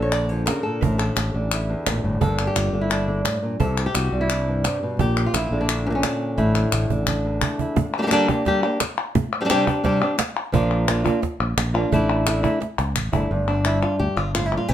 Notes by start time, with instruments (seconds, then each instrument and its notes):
Already playing: fretless electric bass A#1, nylon-string guitar D3 D4 A4
0.02 nylon-string guitar C#5
0.12 nylon-string guitar D5, clap
0.29 nylon-string guitar F3 C#5
0.46 nylon-string guitar C#3 A#4, cajon slap, clap
0.63 nylon-string guitar A#2 A4, cajon slap
0.81 fretless electric bass A1, nylon-string guitar A2 A#4, cajon bass
0.98 nylon-string guitar A4, clap
1.16 fretless electric bass A1, nylon-string guitar G4, cajon slap, clap
1.34 fretless electric bass A1, nylon-string guitar D3
1.51 nylon-string guitar E4, clap
1.69 nylon-string guitar E2
1.86 fretless electric bass A1, nylon-string guitar A#2, cajon slap, clap
2.04 fretless electric bass G1, nylon-string guitar A2
2.21 fretless electric bass G1, nylon-string guitar G2 D3 A#3 D4 A4, cajon bass
2.39 clap
2.47 nylon-string guitar G4
2.56 fretless electric bass G1, nylon-string guitar F4, cajon slap, clap
2.73 fretless electric bass G1, nylon-string guitar D3
2.81 nylon-string guitar E4
2.90 nylon-string guitar D4, clap
3.08 nylon-string guitar D3
3.25 nylon-string guitar A2, cajon slap, clap
3.42 nylon-string guitar A#2
3.60 fretless electric bass C2, nylon-string guitar C3 A4, cajon bass
3.77 nylon-string guitar C4, cajon slap, clap
3.86 nylon-string guitar G4
3.94 fretless electric bass C2, nylon-string guitar F#4, cajon slap, clap
4.12 fretless electric bass C2, nylon-string guitar G3
4.21 nylon-string guitar E4
4.30 nylon-string guitar D4, clap
4.48 nylon-string guitar G2
4.64 nylon-string guitar C3, cajon slap, clap
4.83 nylon-string guitar B2
4.99 fretless electric bass A#1, nylon-string guitar A#2 G4, cajon bass
5.17 clap
5.26 nylon-string guitar F4
5.34 fretless electric bass A#1, nylon-string guitar E4, cajon slap, clap
5.51 fretless electric bass A#1, nylon-string guitar D3
5.61 nylon-string guitar D4
5.69 clap
5.86 nylon-string guitar A#2 A#3 C#4
5.95 nylon-string guitar C#4
6.03 nylon-string guitar D4, cajon slap, clap
6.21 cajon slap
6.38 fretless electric bass A1, nylon-string guitar A2 E4, cajon slap
6.55 cajon slap, clap
6.72 fretless electric bass A1, cajon slap, clap
6.90 fretless electric bass A1, nylon-string guitar D3, cajon bass
7.07 nylon-string guitar D4, cajon bass, clap
7.25 nylon-string guitar E2
7.41 nylon-string guitar A3, cajon bass, clap
7.59 nylon-string guitar E4, cajon bass
7.76 muted nylon-string guitar stroke, cajon bass
7.94 nylon-string guitar G3, cajon slap
7.99 nylon-string guitar G3 A#3 D4 G4
8.03 nylon-string guitar G3 A#3 D4 G4
8.07 nylon-string guitar A#3 D4 G4, cajon slap, clap
8.11 nylon-string guitar D3 G3 A#3 D4 G4
8.29 nylon-string guitar A#3 D4 G4, cajon bass
8.45 nylon-string guitar D3 G3 A#3 D4 G4, cajon bass, cajon slap
8.63 nylon-string guitar A#3 D4 G4
8.80 muted nylon-string guitar stroke, cajon slap, clap
8.98 cajon slap
9.15 muted nylon-string guitar stroke, cajon bass
9.41 nylon-string guitar G3 C4 D4 G4
9.45 nylon-string guitar G3 C4 D4 G4
9.49 nylon-string guitar C3 G3 C4 D4 G4, cajon slap, clap
9.67 nylon-string guitar C4 D4 G4, cajon bass
9.84 nylon-string guitar C3 G3 C4 D4 G4, cajon bass, cajon slap
10.01 nylon-string guitar C4 D4 G4
10.18 muted nylon-string guitar stroke, cajon slap, clap
10.37 cajon slap
10.52 fretless electric bass A#1, nylon-string guitar F3 A#3 D4 F4, cajon bass
10.87 nylon-string guitar F3 A#3 D4 F4, cajon slap, clap
11.04 nylon-string guitar A#3 D4 F4, cajon bass, clap
11.22 muted nylon-string guitar stroke, cajon bass, cajon slap
11.40 fretless electric bass A#1
11.57 fretless electric bass A#1, cajon slap, clap
11.74 nylon-string guitar A#3 D4 F4
11.92 fretless electric bass A1, nylon-string guitar D3 A3 D4 E4, cajon bass
12.26 nylon-string guitar D3 A3 D4 E4, cajon slap, clap
12.43 nylon-string guitar A3 D4 E4, cajon bass
12.60 muted nylon-string guitar stroke, cajon slap
12.79 fretless electric bass C#2, cajon slap
12.96 fretless electric bass A1, cajon bass, clap
13.12 fretless electric bass G1, nylon-string guitar A3 D4 E4, cajon bass
13.31 fretless electric bass G1, nylon-string guitar G2
13.48 nylon-string guitar D4
13.65 nylon-string guitar E4, clap
13.82 nylon-string guitar F4
13.99 fretless electric bass D2, nylon-string guitar G4
14.16 fretless electric bass G1, nylon-string guitar F4
14.34 nylon-string guitar A2 F4, clap
14.46 nylon-string guitar E4
14.51 nylon-string guitar A#2
14.57 nylon-string guitar F4
14.68 fretless electric bass C2, nylon-string guitar C3 G4